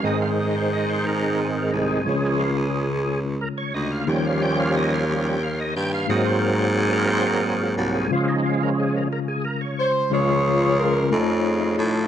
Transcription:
<<
  \new Staff \with { instrumentName = "Saxophone section" } { \time 6/8 \key des \major \tempo 4. = 60 << { r2. | r2. | r2. | r2. |
r2 r8 c''8 | des''4 bes'8 a'8 gis'8 a'8 | } \\ { r2. | r2. | r2. | r2. |
r2. | <f' aes'>4. <cis' ees'>4. | } >> }
  \new Staff \with { instrumentName = "Tonewheel organ" } { \time 6/8 \key des \major ees''16 f''16 ees''16 c''16 ees''16 c''16 bes'8 aes'16 bes'16 aes'8~ | aes'8 f'16 aes'4 r16 bes'16 des''16 ees''16 f''16 | g''16 f''16 g''16 f''16 ees''16 f''8 g''16 f''16 ees''16 g''16 f''16 | ees''16 c''16 bes'16 c''16 aes'16 bes'16 c''16 bes'16 aes'16 f'16 ges'16 aes'16 |
f'16 ees'16 f'16 bes'16 aes'16 bes'16 bes'16 aes'16 bes'16 des''8 r16 | <f f'>2. | }
  \new Staff \with { instrumentName = "Tonewheel organ" } { \clef bass \time 6/8 \key des \major <ees aes c'>2. | <f aes des'>8 r2 r8 | <f g des'>4. <f g des'>8 r4 | <ges bes c'>2. |
<f aes des'>4. r4. | aes4. <a ees'>4. | }
  \new Staff \with { instrumentName = "Tine electric piano" } { \time 6/8 \key des \major <aes c' ees' bes' c''>2. | <aes des' f' des''>2. | <bes ees' g' des''>2. | <aes ees' ges' c''>2. |
<aes des' f' f''>2. | <aes des' f' aes' c'' des''>4. <a ees' f' c'' cis'' gis''>4. | }
  \new Staff \with { instrumentName = "Tine electric piano" } { \clef bass \time 6/8 \key des \major aes,4. r4. | des4. r4. | ees4. r4. | aes,4. r4. |
des4. r4. | des4. r4. | }
  \new Staff \with { instrumentName = "Baritone saxophone" } { \clef bass \time 6/8 \key des \major aes,2~ aes,8 c,8 | des,2 r8 d,8 | ees,2~ ees,8 g,8 | aes,2~ aes,8 c,8 |
r2. | des,4. f,4 a,8 | }
>>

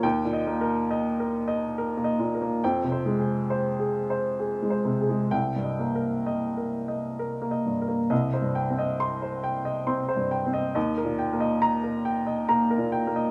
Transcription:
<<
  \new Staff \with { instrumentName = "Upright piano" } { \time 3/4 \key c \phrygian \tempo 4 = 68 << { g''8 r2 r8 | g''8 r2 r8 | g''8 r2 r8 | r4 c'''8 r4. |
r4 bes''8 r4. | } \\ { \tuplet 3/2 { r8 ees''8 bes'8 ees''8 bes'8 ees''8 bes'8 ees''8 bes'8 } | \tuplet 3/2 { r8 c''8 aes'8 c''8 aes'8 c''8 aes'8 c''8 aes'8 } | \tuplet 3/2 { r8 ees''8 bes'8 ees''8 bes'8 ees''8 bes'8 ees''8 bes'8 } | ees''16 c''16 g''16 ees''8 c''16 g''16 ees''16 c'''16 c''16 g''16 ees''16 |
ees''16 bes'16 g''16 ees''8 bes'16 g''16 ees''16 bes''16 bes'16 g''16 ees''16 | } >> }
  \new Staff \with { instrumentName = "Upright piano" } { \clef bass \time 3/4 \key c \phrygian ees,16 bes,16 bes8 r4 r16 bes16 bes,16 bes16 | f,16 c16 aes8 r4 r16 aes16 c16 aes16 | c,16 g,16 bes8 r4 r16 bes16 g,16 bes16 | \tuplet 3/2 { c,8 g,8 c'8~ } c'16 r8. \tuplet 3/2 { c'8 g,8 c'8 } |
\tuplet 3/2 { ees,8 bes,8 bes8~ } bes16 r8. \tuplet 3/2 { bes8 bes,8 bes8 } | }
>>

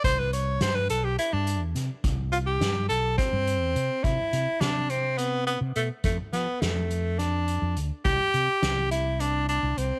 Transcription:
<<
  \new Staff \with { instrumentName = "Tenor saxophone" } { \time 7/8 \key c \major \tempo 4 = 105 c''16 b'16 des''8 c''16 b'16 a'16 g'16 e'16 d'8 r8. | r8 f'16 g'8. a'8 c'4. | e'4 d'8 c'8 b8 b8 a8 | a8 b8 a4 d'4 r8 |
g'4. e'8 d'8 d'8 c'8 | }
  \new Staff \with { instrumentName = "Fretless electric bass" } { \clef bass \time 7/8 \key c \major c,4 g,8 b,,8 r16 g,8 e,16 c16 r16 | c,4 g,8 b,,8 r16 g,8 e,16 c16 r16 | c16 r16 c16 r16 c4.~ c16 c16 b,16 r16 | f,16 r16 f16 r16 f,4.~ f,16 f,16 d,16 r16 |
c,16 r16 c16 r16 c,4.~ c,16 c,16 c,16 r16 | }
  \new DrumStaff \with { instrumentName = "Drums" } \drummode { \time 7/8 <hh bd>8 hh8 <hh sn>8 hh8 hh8 hh8 <hh sn>8 | <hh bd>8 hh8 <hh sn>8 hh8 <hh bd>8 hh8 hh8 | <hh bd>8 <hh sn>8 <hh sn>8 hh8 hh8 hh8 hh8 | <hh bd>8 <hh sn>8 <hh sn>8 hh8 <hh sn>8 hh8 hh8 |
<hh bd>8 hh8 <hh sn>8 <hh sn>8 hh8 hh8 hh8 | }
>>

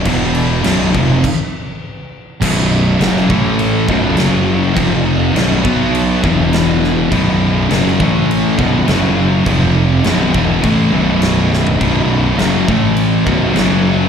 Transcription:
<<
  \new Staff \with { instrumentName = "Distorted electric guitar" } { \clef bass \time 4/4 \key a \dorian \tempo 4 = 102 <e, b, e>4 <b,, fis, b,>8 <eis, c eis>8 r2 | <b,, fis, b,>4 <fis, cis fis>8 <a, e a>4 <b,, fis, b,>8 <fis, cis fis>4 | <f, c f>4 <b,, fis, b,>8 <b, fis b>4 <e, b, e>4. | <b,, fis, b,>4 <fis, cis fis>8 <a, e a>4 <b,, fis, b,>8 <fis, cis fis>4 |
<f, c f>4 <b,, fis, b,>8 <e, b, e>8 <a, e a>8 <b,, fis, b,>4. | <b,, fis, b,>4 <fis, cis fis>8 <a, e a>4 <b,, fis, b,>8 <fis, cis fis>4 | }
  \new Staff \with { instrumentName = "Distorted electric guitar" } { \clef bass \time 4/4 \key a \dorian <e, b, e>4 <b,, fis, b,>8 <eis, c eis>8 r2 | <b,, fis, b,>4 <fis, cis fis>8 <a, e a>4 <b,, fis, b,>8 <fis, cis fis>4 | <f, c f>4 <b,, fis, b,>8 <b, fis b>4 <e, b, e>4. | <b,, fis, b,>4 <fis, cis fis>8 <a, e a>4 <b,, fis, b,>8 <fis, cis fis>4 |
<f, c f>4 <b,, fis, b,>8 <e, b, e>8 <a, e a>8 <b,, fis, b,>4. | <b,, fis, b,>4 <fis, cis fis>8 <a, e a>4 <b,, fis, b,>8 <fis, cis fis>4 | }
  \new Staff \with { instrumentName = "Distorted electric guitar" } { \clef bass \time 4/4 \key a \dorian <e, b, e>4 <b,, fis, b,>8 <eis, c eis>8 r2 | <b,, fis, b,>4 <fis, cis fis>8 <a, e a>4 <b,, fis, b,>8 <fis, cis fis>4 | <f, c f>4 <b,, fis, b,>8 <b, fis b>4 <e, b, e>4. | <b,, fis, b,>4 <fis, cis fis>8 <a, e a>4 <b,, fis, b,>8 <fis, cis fis>4 |
<f, c f>4 <fis, b,>8 <e, b, e>8 <a, e a>8 <b,, fis, b,>4. | <b,, fis, b,>4 <fis, cis fis>8 <a, e a>4 <b,, fis, b,>8 <fis, cis fis>4 | }
  \new Staff \with { instrumentName = "Fingered electric bass" } { \clef bass \time 4/4 \key a \dorian e,,4 b,,,8 eis,,8 r2 | b,,,4 fis,,8 a,,4 b,,,8 fis,,4 | f,,4 b,,,8 b,,4 e,,4. | b,,,4 fis,,8 a,,4 b,,,8 fis,,4 |
f,,4 b,,,8 e,,8 a,,8 b,,,4. | b,,,4 fis,,8 a,,4 b,,,8 fis,,4 | }
  \new DrumStaff \with { instrumentName = "Drums" } \drummode { \time 4/4 <cymc bd>8 cymc8 <cymc sn>8 <cymc bd>8 <cymc bd>4 r4 | <cymc bd>4 <cymc sn>16 sn16 bd8 cymc8 bd8 <cymc sn>4 | <cymc bd>4 <cymc sn>8 bd8 cymc8 bd8 <cymc sn>8 sn8 | <cymc bd>4 <cymc sn>16 sn16 bd8 cymc8 bd8 <cymc sn>4 |
<cymc bd>4 <cymc sn>8 bd8 <cymc bd>4 <cymc sn>8 sn16 tomfh16 | <cymc bd>4 <cymc sn>8 bd8 cymc8 bd8 <cymc sn>4 | }
>>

